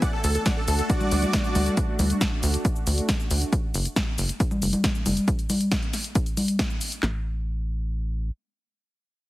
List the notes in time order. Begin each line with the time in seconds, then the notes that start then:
0.02 A3 D4 F#4 D5 F#5, kick, closed hi-hat, shaker
0.13 A4
0.24 D2 A4, open hi-hat, shaker
0.35 A4, closed hi-hat, shaker
0.46 D5 F#5, kick, snare, closed hi-hat, shaker
0.57 A4
0.68 D2 A4, open hi-hat, shaker
0.79 A4, closed hi-hat, shaker
0.90 F#4 D5, kick, closed hi-hat, shaker
1.01 high conga, shaker
1.11 D2, open hi-hat, shaker
1.22 closed hi-hat, high conga, shaker
1.33 kick, snare, closed hi-hat, shaker
1.44 shaker
1.55 D2, open hi-hat, high conga, shaker
1.66 closed hi-hat, shaker
1.77 kick, closed hi-hat, shaker
1.99 D2, open hi-hat, high conga, shaker
2.10 closed hi-hat, shaker
2.21 kick, snare, closed hi-hat, shaker
2.43 D2, open hi-hat, shaker
2.54 closed hi-hat, shaker
2.65 kick, closed hi-hat, shaker
2.76 shaker
2.87 D2, open hi-hat, shaker
2.98 closed hi-hat, shaker
3.09 kick, snare, closed hi-hat, shaker
3.20 shaker
3.31 D2, open hi-hat, shaker
3.42 closed hi-hat, shaker
3.53 kick, closed hi-hat, shaker
3.74 F#1, open hi-hat, shaker
3.85 closed hi-hat, shaker
3.96 kick, snare, closed hi-hat, shaker
4.18 F#1, open hi-hat, shaker
4.29 closed hi-hat, shaker
4.40 kick, closed hi-hat, shaker
4.51 high conga, shaker
4.62 F#1, open hi-hat, shaker
4.73 closed hi-hat, high conga, shaker
4.84 kick, snare, closed hi-hat, shaker
4.95 shaker
5.06 F#1, open hi-hat, high conga, shaker
5.17 closed hi-hat, shaker
5.28 kick, closed hi-hat, shaker
5.39 closed hi-hat, shaker
5.50 open hi-hat, high conga, shaker
5.61 closed hi-hat, shaker
5.72 kick, snare, closed hi-hat, shaker
5.83 closed hi-hat
5.93 snare, open hi-hat, shaker
6.04 closed hi-hat, shaker
6.15 kick, closed hi-hat, shaker
6.26 closed hi-hat, shaker
6.37 open hi-hat, high conga, shaker
6.48 closed hi-hat, shaker
6.59 kick, snare, closed hi-hat, shaker
6.70 shaker
6.81 open hi-hat, shaker
6.92 closed hi-hat, shaker
7.03 A1, snare, clap